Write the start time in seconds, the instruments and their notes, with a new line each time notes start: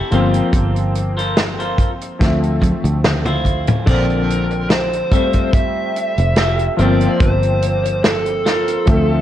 Already playing: electric grand piano E3 G3 A3 C4, clean electric guitar E4 G4 A4
0.11 fingered electric bass G1, electric grand piano F3 A#3 C4, clean electric guitar F4 A4 A#4 C5, closed hi-hat
0.34 closed hi-hat
0.53 fingered electric bass G1, kick, closed hi-hat
0.76 closed hi-hat
0.95 closed hi-hat
1.17 clean electric guitar F4 A4 A#4 C5, closed hi-hat
1.37 snare, closed hi-hat
1.59 clean electric guitar F4 A4 A#4 C5, closed hi-hat
1.78 kick, closed hi-hat
2.01 closed hi-hat
2.19 fingered electric bass D2, electric grand piano F3 A3 C4 E5, kick, snare, closed hi-hat
2.43 closed hi-hat
2.61 muted clean electric guitar stroke, kick, closed hi-hat, high tom
2.84 fingered electric bass D2, muted clean electric guitar stroke, closed hi-hat
3.04 snare, closed hi-hat, mid tom
3.25 clean electric guitar E4 F4 C5, closed hi-hat, mid tom
3.45 kick, closed hi-hat
3.67 closed hi-hat, mid tom
3.86 fingered electric bass A#1, electric grand piano D3 F3 C4, clean electric guitar F4 A4 A#4 D5, lead electric guitar A#4, kick, closed hi-hat, crash
4.10 closed hi-hat
4.30 closed hi-hat
4.51 muted clean electric guitar stroke, closed hi-hat
4.70 lead electric guitar C5, snare, closed hi-hat
4.93 muted clean electric guitar stroke, closed hi-hat
5.11 electric grand piano G3 A3 C4, clean electric guitar F4 G4 A4 E5, kick, closed hi-hat
5.33 kick, closed hi-hat
5.53 lead electric guitar E5, kick, closed hi-hat
5.96 closed hi-hat
6.18 fingered electric bass F1, closed hi-hat
6.36 clean electric guitar F4 G4 A4 E5, snare, closed hi-hat
6.59 closed hi-hat
6.77 fingered electric bass G1, electric grand piano F3 A#3 C4, clean electric guitar F4 A4 A#4 C5, lead electric guitar D5, closed hi-hat
7.01 closed hi-hat
7.20 fingered electric bass G1, lead electric guitar C5, kick, closed hi-hat
7.43 closed hi-hat
7.62 closed hi-hat
7.83 muted clean electric guitar stroke, closed hi-hat
8.03 lead electric guitar A4, muted clean electric guitar stroke, snare, closed hi-hat
8.26 muted clean electric guitar stroke, closed hi-hat
8.45 clean electric guitar F4 A4 A#4 C5, snare, closed hi-hat
8.68 closed hi-hat
8.86 fingered electric bass D2, electric grand piano F3 A3 C4 E5, kick, closed hi-hat